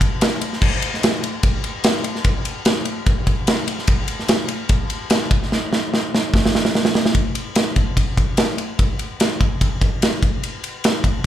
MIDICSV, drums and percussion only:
0, 0, Header, 1, 2, 480
1, 0, Start_track
1, 0, Tempo, 408719
1, 723, Time_signature, 4, 2, 24, 8
1, 13224, End_track
2, 0, Start_track
2, 0, Title_t, "Drums"
2, 11, Note_on_c, 9, 36, 82
2, 16, Note_on_c, 9, 51, 76
2, 128, Note_off_c, 9, 36, 0
2, 134, Note_off_c, 9, 51, 0
2, 249, Note_on_c, 9, 51, 100
2, 259, Note_on_c, 9, 38, 111
2, 366, Note_off_c, 9, 51, 0
2, 377, Note_off_c, 9, 38, 0
2, 486, Note_on_c, 9, 51, 79
2, 604, Note_off_c, 9, 51, 0
2, 622, Note_on_c, 9, 38, 32
2, 724, Note_on_c, 9, 49, 101
2, 726, Note_on_c, 9, 36, 110
2, 739, Note_off_c, 9, 38, 0
2, 841, Note_off_c, 9, 49, 0
2, 843, Note_off_c, 9, 36, 0
2, 966, Note_on_c, 9, 51, 83
2, 1083, Note_off_c, 9, 51, 0
2, 1105, Note_on_c, 9, 38, 32
2, 1212, Note_on_c, 9, 51, 102
2, 1222, Note_off_c, 9, 38, 0
2, 1222, Note_on_c, 9, 38, 115
2, 1329, Note_off_c, 9, 51, 0
2, 1340, Note_off_c, 9, 38, 0
2, 1451, Note_on_c, 9, 51, 77
2, 1568, Note_off_c, 9, 51, 0
2, 1680, Note_on_c, 9, 51, 110
2, 1684, Note_on_c, 9, 36, 113
2, 1798, Note_off_c, 9, 51, 0
2, 1802, Note_off_c, 9, 36, 0
2, 1923, Note_on_c, 9, 51, 70
2, 2041, Note_off_c, 9, 51, 0
2, 2157, Note_on_c, 9, 51, 104
2, 2167, Note_on_c, 9, 38, 117
2, 2274, Note_off_c, 9, 51, 0
2, 2285, Note_off_c, 9, 38, 0
2, 2398, Note_on_c, 9, 51, 76
2, 2516, Note_off_c, 9, 51, 0
2, 2529, Note_on_c, 9, 38, 35
2, 2635, Note_on_c, 9, 51, 96
2, 2639, Note_on_c, 9, 36, 104
2, 2647, Note_off_c, 9, 38, 0
2, 2752, Note_off_c, 9, 51, 0
2, 2757, Note_off_c, 9, 36, 0
2, 2879, Note_on_c, 9, 51, 80
2, 2996, Note_off_c, 9, 51, 0
2, 3113, Note_on_c, 9, 51, 99
2, 3123, Note_on_c, 9, 38, 122
2, 3230, Note_off_c, 9, 51, 0
2, 3241, Note_off_c, 9, 38, 0
2, 3351, Note_on_c, 9, 51, 69
2, 3468, Note_off_c, 9, 51, 0
2, 3598, Note_on_c, 9, 51, 96
2, 3600, Note_on_c, 9, 36, 113
2, 3715, Note_off_c, 9, 51, 0
2, 3718, Note_off_c, 9, 36, 0
2, 3837, Note_on_c, 9, 51, 73
2, 3839, Note_on_c, 9, 36, 80
2, 3955, Note_off_c, 9, 51, 0
2, 3957, Note_off_c, 9, 36, 0
2, 4076, Note_on_c, 9, 51, 107
2, 4087, Note_on_c, 9, 38, 107
2, 4194, Note_off_c, 9, 51, 0
2, 4204, Note_off_c, 9, 38, 0
2, 4317, Note_on_c, 9, 51, 78
2, 4434, Note_off_c, 9, 51, 0
2, 4447, Note_on_c, 9, 38, 33
2, 4549, Note_on_c, 9, 51, 115
2, 4557, Note_on_c, 9, 36, 118
2, 4564, Note_off_c, 9, 38, 0
2, 4666, Note_off_c, 9, 51, 0
2, 4674, Note_off_c, 9, 36, 0
2, 4788, Note_on_c, 9, 51, 83
2, 4905, Note_off_c, 9, 51, 0
2, 4926, Note_on_c, 9, 38, 33
2, 5030, Note_on_c, 9, 51, 104
2, 5041, Note_off_c, 9, 38, 0
2, 5041, Note_on_c, 9, 38, 121
2, 5148, Note_off_c, 9, 51, 0
2, 5158, Note_off_c, 9, 38, 0
2, 5266, Note_on_c, 9, 51, 81
2, 5384, Note_off_c, 9, 51, 0
2, 5508, Note_on_c, 9, 51, 107
2, 5514, Note_on_c, 9, 36, 117
2, 5626, Note_off_c, 9, 51, 0
2, 5631, Note_off_c, 9, 36, 0
2, 5752, Note_on_c, 9, 51, 79
2, 5870, Note_off_c, 9, 51, 0
2, 5987, Note_on_c, 9, 51, 101
2, 5998, Note_on_c, 9, 38, 117
2, 6104, Note_off_c, 9, 51, 0
2, 6115, Note_off_c, 9, 38, 0
2, 6235, Note_on_c, 9, 36, 105
2, 6236, Note_on_c, 9, 51, 73
2, 6353, Note_off_c, 9, 36, 0
2, 6353, Note_off_c, 9, 51, 0
2, 6372, Note_on_c, 9, 38, 34
2, 6485, Note_off_c, 9, 38, 0
2, 6485, Note_on_c, 9, 38, 65
2, 6603, Note_off_c, 9, 38, 0
2, 6725, Note_on_c, 9, 38, 77
2, 6842, Note_off_c, 9, 38, 0
2, 6971, Note_on_c, 9, 38, 74
2, 7088, Note_off_c, 9, 38, 0
2, 7217, Note_on_c, 9, 38, 80
2, 7334, Note_off_c, 9, 38, 0
2, 7441, Note_on_c, 9, 36, 112
2, 7459, Note_on_c, 9, 38, 87
2, 7559, Note_off_c, 9, 36, 0
2, 7576, Note_off_c, 9, 38, 0
2, 7581, Note_on_c, 9, 38, 86
2, 7693, Note_off_c, 9, 38, 0
2, 7693, Note_on_c, 9, 38, 87
2, 7810, Note_off_c, 9, 38, 0
2, 7810, Note_on_c, 9, 38, 81
2, 7927, Note_off_c, 9, 38, 0
2, 7931, Note_on_c, 9, 38, 92
2, 8043, Note_off_c, 9, 38, 0
2, 8043, Note_on_c, 9, 38, 92
2, 8160, Note_off_c, 9, 38, 0
2, 8164, Note_on_c, 9, 38, 113
2, 8282, Note_off_c, 9, 38, 0
2, 8286, Note_on_c, 9, 38, 93
2, 8393, Note_on_c, 9, 51, 87
2, 8395, Note_on_c, 9, 36, 95
2, 8403, Note_off_c, 9, 38, 0
2, 8511, Note_off_c, 9, 51, 0
2, 8513, Note_off_c, 9, 36, 0
2, 8633, Note_on_c, 9, 51, 79
2, 8751, Note_off_c, 9, 51, 0
2, 8871, Note_on_c, 9, 51, 99
2, 8882, Note_on_c, 9, 38, 101
2, 8989, Note_off_c, 9, 51, 0
2, 8999, Note_off_c, 9, 38, 0
2, 9114, Note_on_c, 9, 51, 69
2, 9116, Note_on_c, 9, 36, 79
2, 9231, Note_off_c, 9, 51, 0
2, 9234, Note_off_c, 9, 36, 0
2, 9358, Note_on_c, 9, 36, 77
2, 9360, Note_on_c, 9, 51, 91
2, 9475, Note_off_c, 9, 36, 0
2, 9477, Note_off_c, 9, 51, 0
2, 9600, Note_on_c, 9, 36, 83
2, 9605, Note_on_c, 9, 51, 68
2, 9718, Note_off_c, 9, 36, 0
2, 9722, Note_off_c, 9, 51, 0
2, 9832, Note_on_c, 9, 51, 87
2, 9842, Note_on_c, 9, 38, 109
2, 9949, Note_off_c, 9, 51, 0
2, 9960, Note_off_c, 9, 38, 0
2, 10078, Note_on_c, 9, 51, 67
2, 10195, Note_off_c, 9, 51, 0
2, 10322, Note_on_c, 9, 51, 87
2, 10324, Note_on_c, 9, 36, 109
2, 10440, Note_off_c, 9, 51, 0
2, 10442, Note_off_c, 9, 36, 0
2, 10560, Note_on_c, 9, 51, 66
2, 10677, Note_off_c, 9, 51, 0
2, 10804, Note_on_c, 9, 51, 92
2, 10815, Note_on_c, 9, 38, 102
2, 10922, Note_off_c, 9, 51, 0
2, 10932, Note_off_c, 9, 38, 0
2, 11047, Note_on_c, 9, 36, 86
2, 11047, Note_on_c, 9, 51, 62
2, 11164, Note_off_c, 9, 36, 0
2, 11165, Note_off_c, 9, 51, 0
2, 11288, Note_on_c, 9, 36, 84
2, 11289, Note_on_c, 9, 51, 88
2, 11406, Note_off_c, 9, 36, 0
2, 11406, Note_off_c, 9, 51, 0
2, 11526, Note_on_c, 9, 36, 85
2, 11528, Note_on_c, 9, 51, 67
2, 11644, Note_off_c, 9, 36, 0
2, 11646, Note_off_c, 9, 51, 0
2, 11769, Note_on_c, 9, 51, 91
2, 11780, Note_on_c, 9, 38, 108
2, 11887, Note_off_c, 9, 51, 0
2, 11897, Note_off_c, 9, 38, 0
2, 12009, Note_on_c, 9, 36, 101
2, 12011, Note_on_c, 9, 51, 71
2, 12126, Note_off_c, 9, 36, 0
2, 12129, Note_off_c, 9, 51, 0
2, 12254, Note_on_c, 9, 51, 85
2, 12371, Note_off_c, 9, 51, 0
2, 12492, Note_on_c, 9, 51, 72
2, 12609, Note_off_c, 9, 51, 0
2, 12731, Note_on_c, 9, 51, 100
2, 12741, Note_on_c, 9, 38, 108
2, 12848, Note_off_c, 9, 51, 0
2, 12859, Note_off_c, 9, 38, 0
2, 12965, Note_on_c, 9, 36, 79
2, 12967, Note_on_c, 9, 51, 76
2, 13082, Note_off_c, 9, 36, 0
2, 13084, Note_off_c, 9, 51, 0
2, 13224, End_track
0, 0, End_of_file